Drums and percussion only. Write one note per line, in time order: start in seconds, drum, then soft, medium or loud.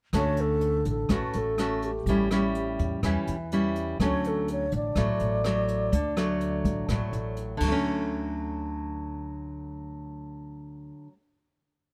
0.13 kick soft
0.13 cross-stick soft
0.13 closed hi-hat soft
0.37 closed hi-hat soft
0.61 closed hi-hat soft
0.85 closed hi-hat soft
1.09 kick soft
1.09 cross-stick soft
1.09 closed hi-hat soft
1.33 closed hi-hat soft
1.58 cross-stick medium
1.58 closed hi-hat soft
1.82 closed hi-hat soft
2.06 kick soft
2.06 closed hi-hat soft
2.31 cross-stick medium
2.31 closed hi-hat soft
2.55 closed hi-hat soft
2.79 closed hi-hat soft
3.03 kick soft
3.03 cross-stick soft
3.03 closed hi-hat soft
3.27 closed hi-hat soft
3.52 closed hi-hat soft
3.75 closed hi-hat soft
4.00 kick soft
4.00 cross-stick soft
4.00 closed hi-hat soft
4.24 closed hi-hat soft
4.48 closed hi-hat soft
4.72 closed hi-hat soft
4.96 kick soft
4.96 cross-stick soft
4.96 closed hi-hat soft
5.19 closed hi-hat soft
5.44 cross-stick medium
5.44 closed hi-hat soft
5.68 closed hi-hat soft
5.92 kick soft
5.92 closed hi-hat medium
6.17 cross-stick medium
6.17 closed hi-hat soft
6.41 closed hi-hat soft
6.65 kick soft
6.65 closed hi-hat soft
6.89 kick medium
6.89 cross-stick soft
6.89 closed hi-hat soft
7.13 closed hi-hat soft
7.37 closed hi-hat soft
7.60 kick medium
7.60 crash soft